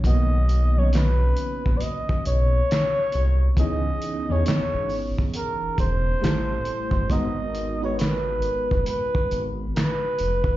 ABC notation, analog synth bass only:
X:1
M:4/4
L:1/16
Q:"Swing 16ths" 1/4=68
K:B
V:1 name="Analog synth bass" clef=bass
B,,,6 A,,, A,,, z2 B,,,2 z2 =C,,2 | C,,2 z E,, G,,, G,,,2 z2 E,,, E,,,2 =A,,,2 z =G,,, | G,,,6 F,,, F,,, z2 G,,,2 z2 ^E,,,2 |]